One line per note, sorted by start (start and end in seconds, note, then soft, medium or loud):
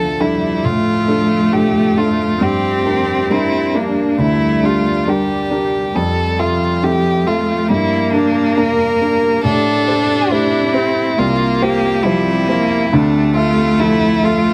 0.00 2.44 D2 soft
0.00 0.16 F3 soft
0.00 0.21 F3 medium
0.00 2.37 F3 medium
0.00 2.37 A3 medium
0.00 0.20 D4 soft
0.00 0.20 A4 soft
0.00 0.22 A4 soft
0.00 2.37 E5 medium
0.19 0.65 G3 medium
0.19 0.60 D4 soft
0.19 0.66 E4 soft
0.19 0.60 A4 soft
0.64 1.07 A2 soft
0.64 2.39 A3 medium
0.64 1.54 F4 soft
1.08 1.48 D4 soft
1.08 1.48 A4 soft
1.53 1.93 F3 soft
1.53 1.93 D4 soft
1.53 1.99 G4 soft
1.53 1.93 A4 soft
1.97 2.37 D4 soft
1.97 2.44 F4 soft
1.97 2.37 A4 soft
2.40 2.84 G2 soft
2.40 5.95 G3 medium
2.40 3.76 C4 medium
2.40 5.95 G4 medium
2.40 3.33 G4 soft
2.40 5.95 D5 medium
2.86 3.26 D4 soft
2.86 3.26 A#4 soft
3.30 3.70 G3 soft
3.30 3.70 D4 soft
3.30 3.77 E4 soft
3.30 3.70 A#4 soft
3.74 4.19 A#3 medium
3.74 4.14 D4 soft
3.74 4.19 D4 soft
3.74 4.14 A#4 soft
4.18 4.61 D2 soft
4.18 5.07 A3 medium
4.18 4.66 E4 soft
4.63 5.03 D4 soft
4.63 5.10 F4 soft
4.63 5.03 G4 soft
5.05 5.94 G3 medium
5.05 5.47 G3 soft
5.05 5.47 D4 soft
5.05 5.97 G4 soft
5.05 5.47 A#4 soft
5.50 5.91 D4 soft
5.50 5.91 A#4 soft
5.95 6.38 F2 soft
5.95 7.70 F3 medium
5.95 7.70 A3 medium
5.95 6.41 A4 soft
5.95 7.70 E5 medium
6.38 7.27 F3 medium
6.38 6.85 F4 soft
6.38 6.79 A4 soft
6.38 6.79 E5 soft
6.83 7.22 C4 soft
6.83 7.23 E4 soft
6.83 7.28 G4 medium
6.83 7.23 A4 soft
7.26 7.69 A3 medium
7.26 7.70 F4 soft
7.26 7.66 A4 soft
7.26 7.66 E5 soft
7.68 8.12 G2 soft
7.68 9.43 A#3 medium
7.68 9.44 A#3 medium
7.68 8.12 E4 medium
7.68 12.91 G4 medium
7.68 9.44 D5 soft
8.13 8.59 D4 medium
8.13 8.53 D4 soft
8.13 8.53 A#4 soft
8.57 8.97 A#3 soft
8.57 8.97 D4 soft
8.57 8.97 A#4 soft
8.57 9.44 A#4 medium
9.01 9.40 D4 soft
9.01 9.41 A#4 soft
9.43 9.86 A2 soft
9.43 12.91 C4 medium
9.43 10.75 D4 medium
9.43 10.33 A4 medium
9.43 11.17 E5 medium
9.88 10.27 G4 soft
9.88 10.27 C5 soft
10.31 10.70 A3 soft
10.31 11.20 E4 medium
10.31 10.71 G4 soft
10.31 10.71 C5 soft
10.74 11.16 C4 medium
10.74 11.13 G4 soft
10.74 11.14 C5 soft
11.17 11.60 C2 soft
11.17 12.05 A#3 medium
11.17 11.64 F4 medium
11.17 12.92 G5 soft
11.62 12.01 F4 soft
11.62 12.05 G4 medium
11.62 12.01 C5 soft
12.04 12.45 F3 soft
12.04 12.49 G3 medium
12.04 12.44 G3 soft
12.04 12.95 E4 medium
12.04 12.45 C5 soft
12.48 12.88 F3 soft
12.48 12.90 A#3 medium
12.48 12.88 C5 soft
12.91 13.35 D2 medium
12.91 14.54 F3 medium
12.91 14.54 A3 medium
12.91 14.54 D4 medium
12.91 13.35 D4 medium
12.91 14.54 E5 medium
13.35 13.81 F4 medium
13.35 13.75 A4 soft
13.35 13.75 E5 soft
13.79 14.20 F3 soft
13.79 14.20 E4 soft
13.79 14.26 E4 medium
13.79 14.20 A4 soft
14.23 14.54 F4 medium
14.23 14.54 A4 soft
14.23 14.54 E5 soft